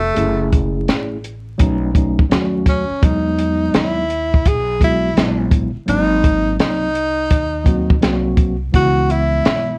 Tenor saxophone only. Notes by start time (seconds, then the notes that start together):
Already playing: A3
2.69 C#4
3.05 D#4
3.76 E4
4.48 G#4
4.84 E4
5.90 D#4
6.61 D#4
8.75 F#4
9.11 E4